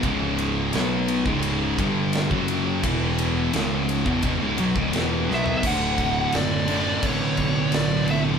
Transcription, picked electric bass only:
0.03 0.69 C#1 loud
0.75 1.23 B1 medium
1.26 1.75 C#1 loud
1.79 2.28 G1 medium
2.30 2.80 F#1 loud
2.84 3.50 E1 loud
3.52 4.02 C#1 medium
4.06 4.22 E1 loud
4.23 4.40 E1 loud
4.41 4.57 C#1 loud
4.59 4.75 B1 medium
4.76 4.92 C#1 loud
4.94 5.27 E1 medium
5.30 5.62 B1 medium
5.64 6.23 D1 loud
6.34 6.94 F#1 medium
7.03 7.33 A1 medium
7.38 7.68 B1 medium
7.73 8.33 B1 medium

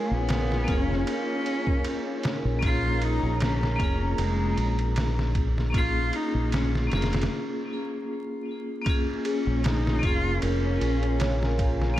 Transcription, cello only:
0.00 0.16 G#3 medium
0.14 0.72 B3 loud
0.70 1.08 C#4 loud
1.09 2.21 C#4 loud
2.64 3.05 F4 loud
3.03 3.41 D#4 loud
3.44 4.16 C#4 medium
4.21 4.94 G#3 medium
5.76 6.17 F4 loud
6.16 6.53 D#4 loud
6.54 6.71 C#4 medium
6.94 7.29 A#3 medium
9.26 9.67 C#4 medium
9.66 10.06 D#4 loud
10.05 10.43 F4 loud
10.44 11.56 C#4 loud

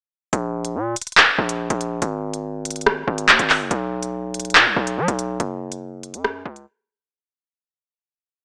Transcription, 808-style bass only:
0.33 0.77 A#1 loud
0.75 0.95 A#2 loud
1.38 1.69 A#1 loud
1.70 2.01 A#1 loud
2.02 3.04 G#1 loud
3.08 3.30 G#1 loud
3.29 3.39 D#2 loud
3.39 3.62 G#1 loud
3.60 3.70 F#1 loud
3.71 4.57 B1 loud
4.55 4.67 B2 loud
4.66 4.76 B1 loud
4.76 4.99 B1 loud
4.98 5.08 F#3 loud
5.08 5.39 B1 loud
5.40 6.15 F#1 loud
6.14 6.44 F#2 loud
6.45 6.66 C#2 loud

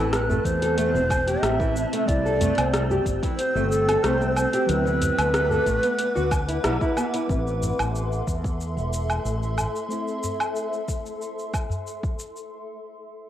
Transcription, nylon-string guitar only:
0.00 0.12 E3 medium
0.30 0.60 A3 medium
0.62 0.76 A4 medium
0.78 0.94 A3 loud
0.95 1.09 C4 medium
1.27 1.58 G4 medium
1.60 1.75 E3 medium
1.93 2.08 A3 medium
2.26 2.39 A4 medium
2.41 2.57 A3 loud
2.58 2.72 C4 medium
2.91 3.21 G4 medium
3.23 3.38 E3 medium
3.56 3.86 A3 medium
3.89 4.02 A4 medium
4.04 4.20 A3 loud
4.21 4.35 C4 medium
4.54 4.69 G4 medium
4.85 5.00 E3 medium
5.18 5.49 A3 medium
5.51 5.65 A4 medium
5.66 5.82 A3 loud
5.83 5.98 B3 medium
6.15 6.30 F#4 medium
6.48 6.57 E4 medium
6.64 6.80 E4 medium
6.82 6.96 E4 medium
6.97 7.06 B3 loud
7.14 7.28 E4 medium

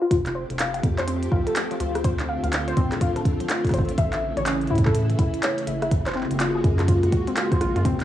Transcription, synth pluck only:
0.02 0.10 F4 loud
0.11 0.21 F4 medium
0.35 0.41 C5 medium
0.59 0.69 F5 medium
0.74 0.78 F5 medium
0.98 1.05 C5 loud
1.08 1.22 C4 loud
1.32 1.38 F4 loud
1.47 1.53 A4 medium
1.71 1.75 F3 medium
1.80 1.90 F4 medium
2.04 2.10 C5 medium
2.29 2.39 F5 medium
2.43 2.47 F5 medium
2.68 2.74 C5 loud
2.77 2.91 C4 loud
3.01 3.07 F4 loud
3.16 3.22 A4 medium
3.40 3.44 F3 medium
3.49 3.60 F4 medium
3.74 3.80 C5 medium
3.98 4.08 E5 medium
4.13 4.17 E5 medium
4.37 4.43 C#5 loud
4.46 4.61 C#4 loud
4.70 4.77 E4 loud
4.86 4.92 A4 medium
5.10 5.13 E3 medium
5.19 5.29 E4 medium
5.43 5.49 C#5 medium
5.67 5.77 E5 medium
5.82 5.86 E5 medium
6.06 6.13 C5 loud
6.16 6.30 C4 loud
6.40 6.46 F4 loud
6.55 6.61 G#4 medium
6.79 6.83 F3 medium
6.88 6.98 F4 medium
7.12 7.23 F#4 medium
7.27 7.36 C4 medium
7.37 7.47 F4 loud
7.52 7.60 C5 medium
7.61 7.67 F4 loud
7.76 7.85 F4 loud
7.85 7.99 C4 loud

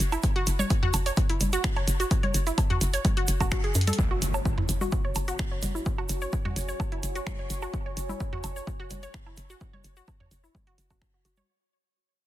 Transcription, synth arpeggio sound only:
0.12 0.15 E4 medium
0.36 0.42 F#4 loud
0.59 0.62 C#5 medium
0.83 0.89 F#4 loud
1.06 1.10 C#5 medium
1.30 1.32 E4 medium
1.53 1.59 F#4 loud
1.76 1.79 C#5 medium
2.00 2.06 F#4 loud
2.23 2.27 C#5 medium
2.47 2.49 E4 medium
2.70 2.76 F#4 loud
2.94 2.96 C#5 medium
3.17 3.23 F#4 loud
3.41 3.44 F#4 medium
3.52 3.58 F#4 medium
3.64 3.68 G#4 medium
3.87 3.93 A4 medium
4.11 4.17 F#4 loud
4.34 4.38 C#5 medium
4.58 4.60 E4 medium
4.81 4.87 F#4 loud
5.05 5.07 C#5 medium
5.28 5.34 F#4 loud
5.52 5.55 C#5 medium
5.75 5.77 E4 medium
5.98 6.04 F#4 loud
6.22 6.24 C#5 medium
6.45 6.51 F#4 loud
6.69 6.73 C#5 medium
6.92 6.94 E4 medium
7.16 7.21 F#4 loud
7.39 7.41 C#5 medium
7.62 7.68 F#4 loud
7.86 7.90 C#5 medium
8.09 8.12 E4 medium
8.33 8.39 F#4 loud
8.56 8.58 C#5 medium
8.80 8.86 F#4 loud
9.03 9.07 C#5 medium
9.26 9.29 E4 medium
9.50 9.56 F#4 loud
9.73 9.76 C#5 medium
9.97 10.03 F#4 loud
10.20 10.24 C#5 medium
10.44 10.46 E4 medium
10.67 10.73 F#4 loud
10.90 10.94 F#4 medium
11.14 11.18 F#4 medium
11.25 11.32 F#4 medium
11.37 11.41 C#5 loud

